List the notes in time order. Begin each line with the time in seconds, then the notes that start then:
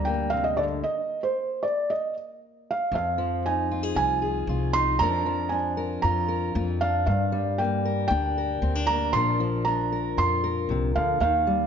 Already playing: D2 G2 G3 D4
0.05 A#3 G5
0.30 C3 F5
0.44 D#5
0.57 D3 D5
0.84 D#5
1.23 C5
1.63 D5
1.90 D#5
2.71 F5
2.92 F2 F5
3.18 F3
3.46 D#4 G#5
3.71 F4
3.83 G#4
3.95 C2 F4 G#5
4.22 G#4
4.47 C2 F4
4.73 D#4 C6
4.99 F2 F3 D4 A#4 A#5
5.03 F4
5.26 F3
5.49 D4 G#5
5.77 A#4
6.02 F2 F4 A#5
6.28 A#4
6.55 F2 F4
6.81 D4 F5
7.06 G2 F5
7.32 G3
7.58 A#3 G5
7.85 A#4
8.08 D2 D4 G5
8.38 A#4
8.62 D2 C4
8.75 D4
8.87 A#3 A#5
9.13 A#1 A#2 F3 D4 F4 A#4 C6
9.40 F3
9.65 D4 A#5
9.92 A#4
10.17 F2 F4 C6
10.44 A#4
10.69 C2 C3
10.95 D2 D3 F5
11.20 D#2 D#3 F5
11.47 G3